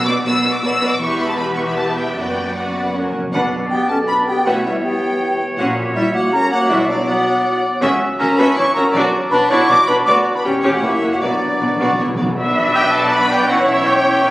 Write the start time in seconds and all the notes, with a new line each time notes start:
Already playing: B1 B2
0.06 B3 F#4 B4 D5 D6
0.25 B1 B2 B3 F#4 B4 D5 E6
0.44 B3 F#4 B4 D5
0.54 D6
0.62 B1 B2 B3 F#4 B4 D5 E6
0.81 B3 F#4 B4 D5
0.90 D6
0.98 E1 E2 B3 G4 B4 E5 C#6
1.19 B5
1.28 A5
1.36 B3 G4 B4 E5 B5
1.56 C#6
1.67 B5
1.75 A5
1.96 G5
2.16 F#1 F#2 B3 F#4 B4 D5 G5
2.54 B3 F#4 B4 D5 F#5
2.94 F#2 C#4 F#4 A#4 C#5
3.02 F#2
3.10 F#2
3.18 F#2
3.26 F#2
3.32 B1 B2 D4 B4 D5 F#5
3.70 B3 G4 G5
3.89 C#4 A4 A5
4.07 D4 B4 B5
4.27 B3 G4 G5
4.45 B1 B2 E3 A3 C#4 F#4 B4 C#5 E5 F#5
4.65 G3 E4 E5
4.83 B3 G4 G5
5.57 A#1 A#2 F#3 C#4 F#4 F#5
5.94 G3 E4 E5
6.13 A#3 F#4 F#5
6.33 C#4 A#4 A#5
6.51 A#3 F#4 F#5
6.68 B1 B2 G3 D4 E4 F#4 D5 E5 F#5
6.89 F#3 D4 D5
7.07 B3 F#4 F#5
7.82 C#2 C#3 F#3 C#4 F#4 E5
8.19 C#2 C#3 C#4 F#4 A#4 E5 A#5
8.37 C#2 C#3 C#4 D4 F#4 B4 E5 B5
8.56 C#2 C#3 C#4 E4 C#5 D5 C#6
8.75 C#2 C#3 C#4 F#4 A#4 E5 A#5
8.93 B1 B2 D4 F#4 D5
9.31 B1 B2 D4 F#4 B4 D5 B5
9.49 B1 B2 D4 E4 F#4 C#5 D5 C#6
9.68 B1 B2 D4 E4 F#4 C#5 D5 D6
9.87 B1 B2 D4 F#4 B4 D5 B5
10.05 D2 B3 F#4 D5 D6
10.35 D4 B4 B5
10.43 E1 E2 C#4 G4 C#5 G5
10.61 E1 E2 C#4 G4 C#5
10.73 A3 F#4 F#5
10.81 F#1 F#2 A#3 E4 B4 C#5 E5
11.01 F#1 F#2 A#3 F#4 C#5
11.11 A#3 F#4 F#5
11.21 B1 B2 F#3 B3 D4 F#4 D5
11.30 B2
11.38 B2
11.45 B2
11.54 B2
11.61 B1 B2 B3 F#4 D5
11.69 B2
11.76 B2
11.80 B1 B2 B3 F#4 D5
11.84 B2
11.92 B2
11.99 B1 B2 B3 E4 C#5
12.07 B2
12.14 B2 D5
12.18 B1 B2 B3 F#4
12.29 B2
12.36 B1 B2 F#3 B3 D4 F#4 B4 D5 E5
12.75 G4 G5
12.94 A4 A5
13.12 B4 D5 B5
13.30 G4 G5
13.49 E3 C#4 E4 F#4 C#5 E5 F#5
13.68 E4 E5
13.86 G4 G5
14.26 B4